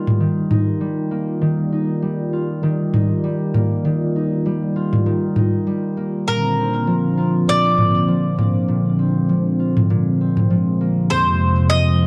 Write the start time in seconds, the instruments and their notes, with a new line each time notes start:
Already playing: harp D#3 G3 A#3 D#4 F4, analog synth pad G3 D#4 F4
0.07 mid tom
0.20 harp D#3
0.51 harp D#4, mid tom
0.81 harp G3
1.11 harp A#3
1.41 harp D#3, analog synth pad D5
1.72 harp D#4
2.02 harp G3
2.33 harp F4
2.63 harp D#3
2.93 harp D#4, mid tom
3.24 harp G3
3.54 harp A#3, mid tom
3.85 harp D#3
4.16 harp D#4
4.46 harp G3
4.76 harp F4
4.93 mid tom
5.06 harp D#3
5.36 harp D#4, mid tom
5.67 harp G3
5.97 harp A#3
6.27 harp A#2, analog synth pad D3 A#3 C4, mandolin A#4
6.57 harp C4
6.87 harp F3
7.17 harp F4
7.48 harp A#2, mandolin D5
7.78 harp C4, mid tom
8.08 harp F3
8.38 harp A#3, mid tom
8.68 harp A#2, analog synth pad G#3
8.99 harp C4
9.29 harp F3
9.59 harp F4
9.77 mid tom
9.90 harp A#2
10.21 harp C4
10.37 mid tom
10.50 harp F3
10.81 harp A#3
11.10 analog synth pad F2 C3, harp F2, mandolin C5
11.41 harp C4
11.70 harp F3, mandolin D#5
12.02 harp F4